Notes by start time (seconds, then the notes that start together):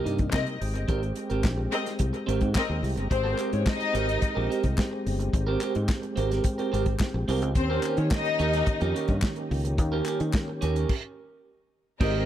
Already playing: C3 G3 A#3 D#4
0.04 G2 D#4 G4 A#4, closed hi-hat
0.18 muted clean electric guitar stroke, kick, closed hi-hat
0.33 C3 C4 A#4 D#5, muted clean electric guitar stroke, kick, snare, clap
0.46 muted clean electric guitar stroke, closed hi-hat
0.60 G#1 G#3 C4 G4, open hi-hat
0.74 G1, muted clean electric guitar stroke, closed hi-hat
0.88 G#1 C4 G4 A#4, kick, closed hi-hat
1.02 muted clean electric guitar stroke, closed hi-hat
1.16 muted clean electric guitar stroke, closed hi-hat
1.30 G#1 C4 G4 A#4, closed hi-hat
1.44 A#1, muted clean electric guitar stroke, kick, snare, clap
1.58 muted clean electric guitar stroke
1.72 C4 A#4 D#5, closed hi-hat
1.86 muted clean electric guitar stroke, snare, closed hi-hat
1.99 C2, muted clean electric guitar stroke, kick, closed hi-hat
2.13 muted clean electric guitar stroke, closed hi-hat
2.27 G#1 C4 G4 A#4, closed hi-hat
2.41 G#2, muted clean electric guitar stroke, kick, closed hi-hat
2.54 C4 A#4 D#5, muted clean electric guitar stroke, kick, snare, clap
2.68 D#2, muted clean electric guitar stroke
2.83 C2, open hi-hat
2.96 G1, muted clean electric guitar stroke, closed hi-hat
3.10 G#1 G#3 C4 G4 C5, muted clean electric guitar stroke, kick, closed hi-hat
3.24 C4 G4 A#4
3.38 C4 G4 A#4, clap, closed hi-hat
3.52 G#2 C#4 C#5, muted clean electric guitar stroke, closed hi-hat
3.65 D#4 D#5, muted clean electric guitar stroke, kick, snare, clap
3.80 muted clean electric guitar stroke, closed hi-hat
3.93 G#1 C4 G4 A#4, closed hi-hat
4.07 C4 G4 A#4, closed hi-hat
4.22 muted clean electric guitar stroke, kick, closed hi-hat
4.35 A#1 C4 G4 A#4
4.49 C4 G4 A#4, closed hi-hat
4.63 C2, muted clean electric guitar stroke, kick, closed hi-hat
4.77 muted clean electric guitar stroke, kick, snare, clap
4.91 muted clean electric guitar stroke
5.07 G1, open hi-hat
5.20 muted clean electric guitar stroke, closed hi-hat
5.33 G#1, muted clean electric guitar stroke, kick, closed hi-hat
5.47 C4 G4 A#4
5.61 C4 G4 A#4, clap, closed hi-hat
5.75 G#2, muted clean electric guitar stroke, closed hi-hat
5.88 muted clean electric guitar stroke, kick, snare, clap
6.02 muted clean electric guitar stroke, closed hi-hat
6.16 G#1 C4 G4 A#4, closed hi-hat
6.30 C4 G4 A#4, snare, closed hi-hat
6.44 muted clean electric guitar stroke, kick, closed hi-hat
6.58 C4 G4 A#4, closed hi-hat
6.72 G#1 C4 G4 A#4, closed hi-hat
6.86 muted clean electric guitar stroke, kick, closed hi-hat
6.99 muted clean electric guitar stroke, kick, snare, clap
7.14 A#1, muted clean electric guitar stroke
7.28 C2 C4 G4 A#4, open hi-hat
7.42 C#2, muted clean electric guitar stroke, closed hi-hat
7.55 D#2 D#3 A#3 C4 C#4 C5, muted clean electric guitar stroke, kick, closed hi-hat
7.70 C#4 G4 A#4
7.83 C#4 G4 A#4, clap, closed hi-hat
7.97 D#3 C#4 C#5, muted clean electric guitar stroke, closed hi-hat
8.11 D#4 D#5, muted clean electric guitar stroke, kick, snare, clap
8.25 muted clean electric guitar stroke, closed hi-hat
8.39 D#2 C#4 G4 A#4, closed hi-hat
8.52 C#4 G4 A#4, snare, closed hi-hat
8.66 muted clean electric guitar stroke, kick, closed hi-hat
8.80 F2 C#4 G4 A#4, closed hi-hat
8.94 C#4 G4 A#4, closed hi-hat
9.08 G2, muted clean electric guitar stroke, kick, closed hi-hat
9.22 muted clean electric guitar stroke, kick, snare, clap
9.36 muted clean electric guitar stroke, closed hi-hat
9.51 C#2, open hi-hat
9.65 muted clean electric guitar stroke, closed hi-hat
9.78 D#2, muted clean electric guitar stroke, kick, closed hi-hat
9.92 C#4 G4 A#4
10.06 C#4 G4 A#4, clap, closed hi-hat
10.20 D#3, muted clean electric guitar stroke, closed hi-hat
10.33 muted clean electric guitar stroke, kick, snare, clap
10.48 muted clean electric guitar stroke
10.61 D#2 C#4 G4 A#4, closed hi-hat
10.75 C#4 G4 A#4, closed hi-hat
10.89 kick, crash
12.00 G#1 G#3 C4 G4 A#4 D#5, kick, crash